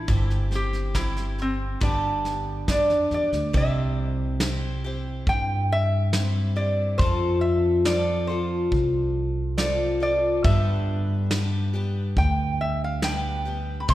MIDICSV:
0, 0, Header, 1, 5, 480
1, 0, Start_track
1, 0, Key_signature, 0, "major"
1, 0, Tempo, 863309
1, 43, Time_signature, 4, 2, 24, 8
1, 7751, End_track
2, 0, Start_track
2, 0, Title_t, "Resonator guitar played with a steel bar"
2, 0, Program_c, 0, 25
2, 0, Note_on_c, 0, 64, 82
2, 269, Note_off_c, 0, 64, 0
2, 308, Note_on_c, 0, 67, 90
2, 531, Note_on_c, 0, 64, 81
2, 544, Note_off_c, 0, 67, 0
2, 776, Note_off_c, 0, 64, 0
2, 789, Note_on_c, 0, 60, 77
2, 1002, Note_off_c, 0, 60, 0
2, 1017, Note_on_c, 0, 62, 77
2, 1491, Note_off_c, 0, 62, 0
2, 1497, Note_on_c, 0, 62, 65
2, 1508, Note_on_c, 0, 74, 69
2, 1741, Note_off_c, 0, 74, 0
2, 1747, Note_on_c, 0, 74, 67
2, 1831, Note_off_c, 0, 62, 0
2, 1963, Note_off_c, 0, 74, 0
2, 1986, Note_on_c, 0, 76, 91
2, 2941, Note_on_c, 0, 79, 96
2, 2968, Note_off_c, 0, 76, 0
2, 3183, Note_off_c, 0, 79, 0
2, 3183, Note_on_c, 0, 76, 96
2, 3648, Note_off_c, 0, 76, 0
2, 3650, Note_on_c, 0, 74, 87
2, 3878, Note_off_c, 0, 74, 0
2, 3880, Note_on_c, 0, 72, 91
2, 4121, Note_on_c, 0, 76, 88
2, 4133, Note_off_c, 0, 72, 0
2, 4367, Note_off_c, 0, 76, 0
2, 4370, Note_on_c, 0, 74, 81
2, 4600, Note_on_c, 0, 72, 80
2, 4617, Note_off_c, 0, 74, 0
2, 5062, Note_off_c, 0, 72, 0
2, 5324, Note_on_c, 0, 74, 80
2, 5568, Note_off_c, 0, 74, 0
2, 5575, Note_on_c, 0, 74, 84
2, 5795, Note_off_c, 0, 74, 0
2, 5808, Note_on_c, 0, 76, 100
2, 6504, Note_off_c, 0, 76, 0
2, 6772, Note_on_c, 0, 79, 90
2, 7010, Note_on_c, 0, 76, 81
2, 7016, Note_off_c, 0, 79, 0
2, 7131, Note_off_c, 0, 76, 0
2, 7141, Note_on_c, 0, 77, 75
2, 7251, Note_on_c, 0, 79, 84
2, 7256, Note_off_c, 0, 77, 0
2, 7672, Note_off_c, 0, 79, 0
2, 7674, Note_on_c, 0, 83, 73
2, 7718, Note_off_c, 0, 83, 0
2, 7725, Note_on_c, 0, 84, 97
2, 7751, Note_off_c, 0, 84, 0
2, 7751, End_track
3, 0, Start_track
3, 0, Title_t, "Twelve-string acoustic guitar"
3, 0, Program_c, 1, 25
3, 44, Note_on_c, 1, 43, 67
3, 48, Note_on_c, 1, 52, 63
3, 48, Note_on_c, 1, 55, 71
3, 53, Note_on_c, 1, 60, 76
3, 53, Note_on_c, 1, 67, 71
3, 54, Note_on_c, 1, 64, 66
3, 277, Note_off_c, 1, 67, 0
3, 281, Note_off_c, 1, 64, 0
3, 283, Note_on_c, 1, 67, 49
3, 285, Note_off_c, 1, 43, 0
3, 286, Note_off_c, 1, 60, 0
3, 287, Note_off_c, 1, 52, 0
3, 287, Note_off_c, 1, 55, 0
3, 288, Note_on_c, 1, 64, 45
3, 292, Note_on_c, 1, 60, 42
3, 299, Note_on_c, 1, 55, 42
3, 517, Note_off_c, 1, 55, 0
3, 522, Note_off_c, 1, 60, 0
3, 523, Note_off_c, 1, 64, 0
3, 523, Note_on_c, 1, 55, 50
3, 525, Note_off_c, 1, 67, 0
3, 529, Note_on_c, 1, 60, 57
3, 530, Note_on_c, 1, 64, 53
3, 536, Note_on_c, 1, 67, 58
3, 1002, Note_off_c, 1, 55, 0
3, 1004, Note_on_c, 1, 43, 66
3, 1007, Note_on_c, 1, 50, 62
3, 1008, Note_off_c, 1, 60, 0
3, 1008, Note_off_c, 1, 67, 0
3, 1009, Note_off_c, 1, 64, 0
3, 1009, Note_on_c, 1, 55, 67
3, 1010, Note_on_c, 1, 59, 68
3, 1014, Note_on_c, 1, 62, 66
3, 1015, Note_on_c, 1, 67, 72
3, 1484, Note_off_c, 1, 55, 0
3, 1487, Note_off_c, 1, 43, 0
3, 1488, Note_off_c, 1, 50, 0
3, 1490, Note_off_c, 1, 59, 0
3, 1490, Note_on_c, 1, 55, 48
3, 1492, Note_off_c, 1, 62, 0
3, 1492, Note_off_c, 1, 67, 0
3, 1496, Note_on_c, 1, 59, 52
3, 1501, Note_on_c, 1, 62, 55
3, 1505, Note_on_c, 1, 67, 49
3, 1721, Note_off_c, 1, 67, 0
3, 1728, Note_off_c, 1, 62, 0
3, 1728, Note_on_c, 1, 67, 36
3, 1730, Note_off_c, 1, 55, 0
3, 1731, Note_off_c, 1, 59, 0
3, 1734, Note_on_c, 1, 62, 36
3, 1738, Note_on_c, 1, 59, 35
3, 1742, Note_on_c, 1, 55, 30
3, 1962, Note_off_c, 1, 55, 0
3, 1964, Note_on_c, 1, 48, 79
3, 1966, Note_off_c, 1, 59, 0
3, 1968, Note_off_c, 1, 67, 0
3, 1968, Note_on_c, 1, 60, 81
3, 1969, Note_on_c, 1, 55, 82
3, 1972, Note_off_c, 1, 62, 0
3, 1974, Note_on_c, 1, 64, 70
3, 1974, Note_on_c, 1, 67, 70
3, 2447, Note_off_c, 1, 55, 0
3, 2448, Note_off_c, 1, 48, 0
3, 2453, Note_off_c, 1, 64, 0
3, 2453, Note_off_c, 1, 67, 0
3, 2453, Note_on_c, 1, 55, 56
3, 2455, Note_off_c, 1, 60, 0
3, 2457, Note_on_c, 1, 60, 56
3, 2460, Note_on_c, 1, 64, 66
3, 2464, Note_on_c, 1, 67, 70
3, 2686, Note_off_c, 1, 67, 0
3, 2692, Note_off_c, 1, 55, 0
3, 2693, Note_on_c, 1, 67, 59
3, 2694, Note_off_c, 1, 60, 0
3, 2695, Note_off_c, 1, 64, 0
3, 2702, Note_on_c, 1, 64, 53
3, 2706, Note_on_c, 1, 60, 49
3, 3411, Note_off_c, 1, 60, 0
3, 3412, Note_off_c, 1, 67, 0
3, 3413, Note_on_c, 1, 55, 57
3, 3415, Note_off_c, 1, 64, 0
3, 3418, Note_on_c, 1, 60, 56
3, 3421, Note_on_c, 1, 64, 63
3, 3424, Note_on_c, 1, 67, 62
3, 3639, Note_off_c, 1, 67, 0
3, 3646, Note_on_c, 1, 67, 49
3, 3647, Note_off_c, 1, 64, 0
3, 3652, Note_off_c, 1, 55, 0
3, 3652, Note_off_c, 1, 60, 0
3, 3654, Note_on_c, 1, 64, 47
3, 3658, Note_on_c, 1, 60, 39
3, 3888, Note_off_c, 1, 67, 0
3, 3889, Note_off_c, 1, 60, 0
3, 3892, Note_off_c, 1, 64, 0
3, 3892, Note_on_c, 1, 53, 76
3, 3896, Note_on_c, 1, 60, 80
3, 3899, Note_on_c, 1, 65, 78
3, 3901, Note_on_c, 1, 69, 80
3, 4358, Note_off_c, 1, 53, 0
3, 4362, Note_off_c, 1, 60, 0
3, 4365, Note_off_c, 1, 65, 0
3, 4365, Note_on_c, 1, 53, 62
3, 4369, Note_on_c, 1, 60, 67
3, 4370, Note_off_c, 1, 69, 0
3, 4372, Note_on_c, 1, 65, 67
3, 4377, Note_on_c, 1, 69, 70
3, 4604, Note_off_c, 1, 69, 0
3, 4607, Note_off_c, 1, 53, 0
3, 4609, Note_off_c, 1, 60, 0
3, 4611, Note_off_c, 1, 65, 0
3, 4611, Note_on_c, 1, 69, 50
3, 4617, Note_on_c, 1, 65, 46
3, 4623, Note_on_c, 1, 60, 39
3, 5324, Note_off_c, 1, 60, 0
3, 5324, Note_on_c, 1, 53, 54
3, 5328, Note_off_c, 1, 65, 0
3, 5330, Note_off_c, 1, 69, 0
3, 5331, Note_on_c, 1, 60, 61
3, 5335, Note_on_c, 1, 65, 62
3, 5339, Note_on_c, 1, 69, 65
3, 5555, Note_off_c, 1, 69, 0
3, 5562, Note_on_c, 1, 69, 48
3, 5563, Note_off_c, 1, 65, 0
3, 5566, Note_off_c, 1, 53, 0
3, 5569, Note_on_c, 1, 65, 47
3, 5570, Note_off_c, 1, 60, 0
3, 5575, Note_on_c, 1, 60, 36
3, 5805, Note_off_c, 1, 69, 0
3, 5808, Note_off_c, 1, 60, 0
3, 5808, Note_on_c, 1, 43, 77
3, 5809, Note_off_c, 1, 65, 0
3, 5811, Note_on_c, 1, 50, 74
3, 5811, Note_on_c, 1, 55, 83
3, 5811, Note_on_c, 1, 59, 78
3, 5813, Note_on_c, 1, 67, 80
3, 5814, Note_on_c, 1, 62, 86
3, 6287, Note_off_c, 1, 43, 0
3, 6288, Note_off_c, 1, 55, 0
3, 6288, Note_off_c, 1, 59, 0
3, 6289, Note_off_c, 1, 50, 0
3, 6290, Note_off_c, 1, 62, 0
3, 6290, Note_on_c, 1, 55, 58
3, 6295, Note_on_c, 1, 59, 61
3, 6299, Note_on_c, 1, 62, 64
3, 6300, Note_off_c, 1, 67, 0
3, 6302, Note_on_c, 1, 67, 74
3, 6518, Note_off_c, 1, 67, 0
3, 6524, Note_off_c, 1, 62, 0
3, 6525, Note_on_c, 1, 67, 56
3, 6528, Note_off_c, 1, 55, 0
3, 6529, Note_off_c, 1, 59, 0
3, 6531, Note_on_c, 1, 62, 57
3, 6535, Note_on_c, 1, 59, 52
3, 6538, Note_on_c, 1, 55, 51
3, 7244, Note_off_c, 1, 55, 0
3, 7245, Note_off_c, 1, 59, 0
3, 7246, Note_on_c, 1, 55, 59
3, 7247, Note_off_c, 1, 62, 0
3, 7252, Note_on_c, 1, 59, 67
3, 7254, Note_on_c, 1, 62, 64
3, 7257, Note_off_c, 1, 67, 0
3, 7259, Note_on_c, 1, 67, 64
3, 7474, Note_off_c, 1, 67, 0
3, 7477, Note_off_c, 1, 62, 0
3, 7480, Note_on_c, 1, 67, 51
3, 7482, Note_off_c, 1, 59, 0
3, 7484, Note_off_c, 1, 55, 0
3, 7484, Note_on_c, 1, 62, 44
3, 7489, Note_on_c, 1, 59, 49
3, 7493, Note_on_c, 1, 55, 40
3, 7714, Note_off_c, 1, 55, 0
3, 7719, Note_on_c, 1, 48, 78
3, 7721, Note_off_c, 1, 67, 0
3, 7721, Note_on_c, 1, 55, 76
3, 7722, Note_off_c, 1, 59, 0
3, 7723, Note_off_c, 1, 62, 0
3, 7724, Note_on_c, 1, 60, 80
3, 7726, Note_on_c, 1, 64, 85
3, 7728, Note_on_c, 1, 67, 94
3, 7751, Note_off_c, 1, 48, 0
3, 7751, Note_off_c, 1, 55, 0
3, 7751, Note_off_c, 1, 60, 0
3, 7751, Note_off_c, 1, 64, 0
3, 7751, Note_off_c, 1, 67, 0
3, 7751, End_track
4, 0, Start_track
4, 0, Title_t, "Upright bass"
4, 0, Program_c, 2, 32
4, 43, Note_on_c, 2, 31, 94
4, 985, Note_off_c, 2, 31, 0
4, 1007, Note_on_c, 2, 31, 69
4, 1466, Note_off_c, 2, 31, 0
4, 1489, Note_on_c, 2, 43, 70
4, 1597, Note_off_c, 2, 43, 0
4, 1608, Note_on_c, 2, 41, 66
4, 1716, Note_off_c, 2, 41, 0
4, 1728, Note_on_c, 2, 40, 65
4, 1837, Note_off_c, 2, 40, 0
4, 1846, Note_on_c, 2, 38, 61
4, 1956, Note_off_c, 2, 38, 0
4, 1967, Note_on_c, 2, 36, 90
4, 2907, Note_off_c, 2, 36, 0
4, 2929, Note_on_c, 2, 43, 82
4, 3868, Note_off_c, 2, 43, 0
4, 3887, Note_on_c, 2, 41, 93
4, 4826, Note_off_c, 2, 41, 0
4, 4847, Note_on_c, 2, 36, 88
4, 5785, Note_off_c, 2, 36, 0
4, 5808, Note_on_c, 2, 43, 96
4, 6743, Note_off_c, 2, 43, 0
4, 6764, Note_on_c, 2, 38, 86
4, 7700, Note_off_c, 2, 38, 0
4, 7720, Note_on_c, 2, 36, 100
4, 7751, Note_off_c, 2, 36, 0
4, 7751, End_track
5, 0, Start_track
5, 0, Title_t, "Drums"
5, 45, Note_on_c, 9, 36, 80
5, 45, Note_on_c, 9, 38, 25
5, 100, Note_off_c, 9, 38, 0
5, 101, Note_off_c, 9, 36, 0
5, 168, Note_on_c, 9, 38, 25
5, 224, Note_off_c, 9, 38, 0
5, 286, Note_on_c, 9, 38, 25
5, 342, Note_off_c, 9, 38, 0
5, 406, Note_on_c, 9, 38, 24
5, 462, Note_off_c, 9, 38, 0
5, 527, Note_on_c, 9, 36, 57
5, 528, Note_on_c, 9, 38, 82
5, 583, Note_off_c, 9, 36, 0
5, 583, Note_off_c, 9, 38, 0
5, 647, Note_on_c, 9, 38, 25
5, 703, Note_off_c, 9, 38, 0
5, 770, Note_on_c, 9, 38, 23
5, 825, Note_off_c, 9, 38, 0
5, 1008, Note_on_c, 9, 38, 25
5, 1009, Note_on_c, 9, 36, 82
5, 1064, Note_off_c, 9, 36, 0
5, 1064, Note_off_c, 9, 38, 0
5, 1251, Note_on_c, 9, 38, 24
5, 1306, Note_off_c, 9, 38, 0
5, 1490, Note_on_c, 9, 36, 60
5, 1490, Note_on_c, 9, 38, 75
5, 1546, Note_off_c, 9, 36, 0
5, 1546, Note_off_c, 9, 38, 0
5, 1611, Note_on_c, 9, 38, 26
5, 1667, Note_off_c, 9, 38, 0
5, 1730, Note_on_c, 9, 38, 26
5, 1785, Note_off_c, 9, 38, 0
5, 1849, Note_on_c, 9, 38, 23
5, 1905, Note_off_c, 9, 38, 0
5, 1969, Note_on_c, 9, 36, 83
5, 2025, Note_off_c, 9, 36, 0
5, 2446, Note_on_c, 9, 38, 87
5, 2502, Note_off_c, 9, 38, 0
5, 2930, Note_on_c, 9, 36, 69
5, 2985, Note_off_c, 9, 36, 0
5, 3408, Note_on_c, 9, 38, 94
5, 3463, Note_off_c, 9, 38, 0
5, 3888, Note_on_c, 9, 36, 84
5, 3944, Note_off_c, 9, 36, 0
5, 4366, Note_on_c, 9, 38, 92
5, 4422, Note_off_c, 9, 38, 0
5, 4848, Note_on_c, 9, 36, 67
5, 4903, Note_off_c, 9, 36, 0
5, 5326, Note_on_c, 9, 38, 92
5, 5382, Note_off_c, 9, 38, 0
5, 5807, Note_on_c, 9, 36, 94
5, 5863, Note_off_c, 9, 36, 0
5, 6287, Note_on_c, 9, 38, 92
5, 6342, Note_off_c, 9, 38, 0
5, 6765, Note_on_c, 9, 36, 70
5, 6821, Note_off_c, 9, 36, 0
5, 7241, Note_on_c, 9, 38, 84
5, 7297, Note_off_c, 9, 38, 0
5, 7722, Note_on_c, 9, 36, 93
5, 7751, Note_off_c, 9, 36, 0
5, 7751, End_track
0, 0, End_of_file